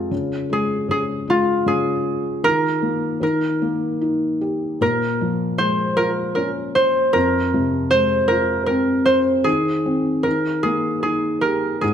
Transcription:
0.00 0.14 C3 soft
0.00 0.14 G#3 medium
0.00 0.13 C4 soft
0.00 1.29 F4 medium
0.00 0.52 G#4 medium
0.00 0.71 A#4 medium
0.00 0.18 C5 medium
0.11 0.87 C#3 medium
0.50 1.26 G#3 medium
0.50 0.91 G#4 medium
0.89 1.65 C#3 soft
0.89 1.01 G#4 medium
1.28 2.40 G#3 medium
1.28 3.82 F4 medium
1.66 2.42 C#3 medium
1.66 3.95 G#4 medium
2.44 3.19 D#3 medium
2.44 3.22 A#4 loud
2.82 3.20 A#3 soft
3.21 4.77 D#3 medium
3.21 4.81 A#4 medium
3.62 4.78 A#3 soft
4.01 4.79 D#4 soft
4.41 4.80 G4 soft
4.81 7.12 A#2 medium
4.81 5.96 A#4 medium
5.21 6.73 F3 medium
5.58 7.11 G#3 soft
5.58 6.75 C5 medium
5.97 7.12 F4 soft
5.97 6.08 A#4 medium
6.35 7.13 C#4 soft
6.35 6.46 A#4 medium
6.75 7.90 C5 medium
7.13 9.42 F2 medium
7.13 8.27 A#4 loud
7.54 9.04 C3 medium
7.91 9.43 G#3 soft
7.91 9.05 C5 medium
8.28 9.43 F4 soft
8.28 8.66 A#4 medium
8.66 9.44 C4 soft
8.66 10.23 A#4 medium
9.05 9.16 C5 medium
9.44 10.23 D#3 medium
9.44 10.63 G#4 medium
9.86 10.24 C4 soft
10.23 11.79 D#3 medium
10.23 11.41 A#4 medium
10.63 11.79 A#3 soft
10.63 11.02 G#4 medium
11.03 11.80 D#4 soft
11.03 11.81 G#4 medium
11.41 11.81 G4 soft
11.41 11.94 A#4 medium
11.81 11.94 G#2 medium
11.81 11.94 G#4 medium

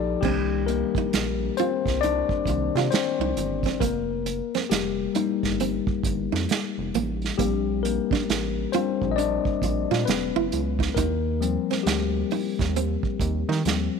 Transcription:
0.00 0.16 A#1 medium
0.00 0.18 F3 medium
0.00 0.18 D#4 medium
0.00 0.18 G4 medium
0.00 0.19 A4 medium
0.00 0.19 D5 medium
0.21 0.83 C2 loud
0.21 1.52 D#3 soft
0.21 0.43 G3 medium
0.21 0.68 A#3 soft
0.21 0.41 C4 medium
0.21 1.53 D4 medium
0.21 0.41 G4 loud
0.21 kick loud
0.21 crash loud
0.66 1.53 A#3 medium
0.66 1.59 A#4 loud
0.66 muted nylon-string guitar stroke soft
0.66 closed hi-hat medium
0.95 1.07 D#4 medium
0.95 kick loud
0.95 closed hi-hat soft
1.13 1.50 A#1 medium
1.13 snare loud
1.13 closed hi-hat medium
1.57 1.99 C4 medium
1.57 1.75 F4 medium
1.57 2.03 C5 loud
1.57 closed hi-hat medium
1.86 2.22 C2 medium
1.86 kick medium
1.86 snare soft
1.86 closed hi-hat soft
2.01 2.47 D4 medium
2.01 2.20 D#4 medium
2.01 2.86 D5 loud
2.01 closed hi-hat medium
2.29 kick medium
2.46 2.69 C2 loud
2.46 2.87 D#3 soft
2.46 2.87 A#3 soft
2.46 2.88 D4 medium
2.46 muted nylon-string guitar stroke soft
2.46 kick medium
2.46 closed hi-hat medium
2.75 2.88 C3 loud
2.75 2.86 F4 medium
2.75 snare soft
2.75 closed hi-hat soft
2.91 3.77 C4 medium
2.91 3.83 C5 loud
2.91 snare loud
2.91 closed hi-hat medium
3.20 3.33 C2 medium
3.20 3.30 D#4 medium
3.37 3.73 G1 medium
3.37 muted nylon-string guitar stroke medium
3.37 closed hi-hat medium
3.63 3.75 C4 medium
3.63 kick medium
3.63 snare soft
3.63 closed hi-hat soft
3.80 4.41 F1 loud
3.80 3.98 A#3 medium
3.80 4.67 A#3 medium
3.80 4.66 A#4 medium
3.80 kick loud
3.80 closed hi-hat medium
4.26 muted nylon-string guitar stroke soft
4.26 closed hi-hat medium
4.54 4.64 C4 medium
4.54 snare soft
4.54 closed hi-hat soft
4.70 5.07 F1 medium
4.70 5.13 G3 medium
4.70 6.89 G4 medium
4.70 snare loud
4.70 closed hi-hat medium
5.15 7.34 G3 medium
5.15 7.35 A#3 medium
5.15 7.35 D#4 medium
5.15 5.32 D#4 medium
5.15 closed hi-hat medium
5.43 5.80 G1 medium
5.43 kick medium
5.43 snare soft
5.43 closed hi-hat soft
5.60 5.77 C4 medium
5.60 closed hi-hat medium
5.87 kick loud
6.03 6.27 G1 loud
6.03 muted nylon-string guitar stroke soft
6.03 kick loud
6.03 closed hi-hat medium
6.32 6.46 F2 medium
6.32 6.42 D#4 medium
6.32 snare soft
6.49 snare loud
6.49 closed hi-hat medium
6.78 6.91 F1 medium
6.94 7.31 A1 medium
6.94 7.11 A#3 medium
6.94 closed hi-hat medium
7.22 snare soft
7.22 closed hi-hat soft
7.38 7.99 A#1 loud
7.38 7.81 G3 medium
7.38 7.56 A#3 medium
7.38 8.73 C4 medium
7.38 8.74 D4 medium
7.38 7.84 G4 medium
7.38 kick loud
7.38 closed hi-hat loud
7.83 8.70 A#3 medium
7.83 8.69 A#4 medium
7.83 muted nylon-string guitar stroke soft
7.83 closed hi-hat medium
8.11 8.22 D4 medium
8.11 kick loud
8.11 snare soft
8.11 closed hi-hat soft
8.29 8.66 A1 loud
8.29 snare loud
8.29 closed hi-hat medium
8.72 9.14 G3 medium
8.72 9.11 C4 medium
8.72 9.14 D4 medium
8.72 8.91 F4 medium
8.72 9.13 C5 medium
8.72 closed hi-hat medium
9.02 9.39 A#1 medium
9.02 kick medium
9.11 9.17 D#5 medium
9.16 9.35 D4 medium
9.16 10.04 D4 medium
9.16 10.09 D5 loud
9.16 closed hi-hat medium
9.45 kick loud
9.62 9.85 A#1 medium
9.62 muted nylon-string guitar stroke soft
9.62 kick medium
9.62 closed hi-hat medium
9.91 10.05 A#2 medium
9.91 10.01 F4 medium
9.91 snare soft
9.91 closed hi-hat soft
10.05 10.31 E1 medium
10.05 10.93 F#3 medium
10.05 10.93 G#3 medium
10.05 10.93 B3 medium
10.05 10.93 C#4 medium
10.05 10.98 B4 medium
10.05 snare loud
10.05 closed hi-hat medium
10.36 10.50 F#1 medium
10.36 10.46 E4 medium
10.52 10.90 C#2 medium
10.52 muted nylon-string guitar stroke soft
10.52 closed hi-hat medium
10.79 10.90 D#4 medium
10.79 kick medium
10.79 snare soft
10.95 11.57 D#2 loud
10.95 11.83 A#3 medium
10.95 11.14 D#4 medium
10.95 11.81 A#4 loud
10.95 kick loud
10.95 closed hi-hat medium
11.41 12.05 F3 medium
11.41 11.86 G3 medium
11.41 12.05 C4 medium
11.41 muted nylon-string guitar stroke soft
11.41 closed hi-hat medium
11.70 11.80 C4 medium
11.70 snare soft
11.70 closed hi-hat soft
11.83 12.23 D2 medium
11.83 13.64 G3 medium
11.83 14.00 G4 medium
11.83 snare loud
11.83 closed hi-hat medium
12.31 12.48 D#4 medium
12.31 open hi-hat soft
12.59 12.96 D#2 medium
12.59 kick medium
12.59 snare soft
12.59 closed hi-hat soft
12.76 12.93 C4 medium
12.76 closed hi-hat medium
13.03 kick medium
13.20 13.44 D#2 medium
13.20 muted nylon-string guitar stroke soft
13.20 kick loud
13.20 closed hi-hat medium
13.49 13.62 D#3 loud
13.49 13.59 D#4 medium
13.49 snare soft
13.65 13.88 D#2 medium
13.65 14.00 F3 soft
13.65 14.00 G3 soft
13.65 14.00 C4 soft
13.65 snare loud
13.65 closed hi-hat medium

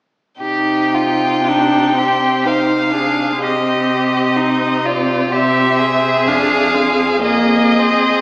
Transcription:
0.40 3.38 C3 soft
0.40 1.42 D#4 soft
0.40 0.96 G4 soft
0.40 2.49 G5 soft
0.95 1.50 F4 soft
1.45 1.95 D4 soft
1.45 2.00 D#4 soft
1.96 2.46 C4 soft
1.96 2.48 G4 soft
2.44 2.93 D#4 soft
2.44 2.93 C5 soft
2.44 3.43 F5 medium
2.92 3.39 D4 soft
2.92 3.44 G#4 soft
3.39 5.28 C3 soft
3.39 5.27 C4 soft
3.39 4.38 G4 soft
3.44 4.88 D#5 medium
4.37 4.87 D#4 soft
4.85 5.33 F4 soft
4.85 5.36 D5 medium
5.31 6.27 C3 soft
5.31 6.29 C4 soft
5.31 5.80 G4 soft
5.31 6.29 E5 medium
5.79 7.23 G#4 medium
6.25 8.21 F2 medium
6.25 6.76 D4 soft
6.25 7.23 F5 medium
6.74 7.22 C4 soft
7.22 7.80 A#3 soft
7.22 8.21 G#4 medium
7.22 8.21 D#5 medium
7.79 8.21 C4 soft

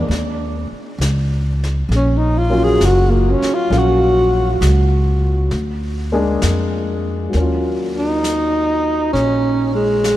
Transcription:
0.00 0.11 G#3 medium
0.00 0.11 A#3 soft
0.00 0.10 D4 medium
0.00 0.11 G#4 medium
0.08 0.66 D#2 medium
0.08 brush sweep soft
0.08 snare soft
0.71 muted upright bass stroke soft
0.98 1.86 C#2 medium
0.98 snare medium
0.98 hi-hat pedal medium
1.64 snare soft
1.89 2.76 A#1 medium
1.89 brush sweep soft
1.89 snare soft
1.95 2.19 C#4 medium
2.17 2.40 D#4 medium
2.38 2.65 F4 medium
2.50 2.76 F#3 medium
2.50 2.76 A#3 medium
2.50 2.76 C#4 medium
2.50 2.77 F4 medium
2.64 2.87 G#4 medium
2.80 3.37 F#1 medium
2.80 snare medium
2.80 hi-hat pedal soft
2.85 3.12 F#4 medium
3.10 3.32 A#3 medium
3.31 3.55 C#4 medium
3.42 muted upright bass stroke soft
3.42 snare soft
3.54 3.80 F4 medium
3.70 4.57 A#1 medium
3.70 4.25 F#3 medium
3.70 4.25 A#3 soft
3.70 4.26 C#4 soft
3.70 4.26 F5 medium
3.70 brush sweep medium
3.70 snare soft
3.78 4.64 F#4 medium
4.61 5.48 C#2 medium
4.61 snare medium
4.61 hi-hat pedal medium
5.51 6.39 D2 medium
5.51 brush sweep soft
5.51 snare soft
6.12 6.38 G#3 medium
6.12 6.38 A#3 medium
6.12 6.39 D4 medium
6.12 6.39 G#4 medium
6.42 7.30 F2 medium
6.42 snare medium
6.42 hi-hat pedal medium
7.30 10.17 F#3 soft
7.30 10.17 A#3 soft
7.30 brush sweep soft
7.30 snare soft
7.34 9.10 D#2 medium
7.34 10.17 C#4 soft
7.40 10.17 F4 soft
7.98 9.11 D#4 medium
8.24 snare soft
8.24 hi-hat pedal medium
9.13 10.17 A#1 medium
9.13 9.71 C#4 medium
9.13 brush sweep soft
9.13 snare soft
9.75 10.17 G#3 medium
10.04 snare soft
10.04 hi-hat pedal medium

